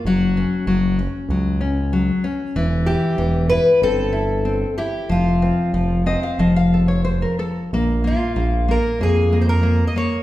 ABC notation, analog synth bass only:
X:1
M:4/4
L:1/8
Q:1/4=94
K:Fphr
V:1 name="Analog synth bass" clef=bass
G,,,2 G,,,2 D,,4 | =E,,,2 E,,,2 =G,,,4 | F,,,2 F,,,2 F,,,4 | B,,,2 B,,,2 F,,4 |]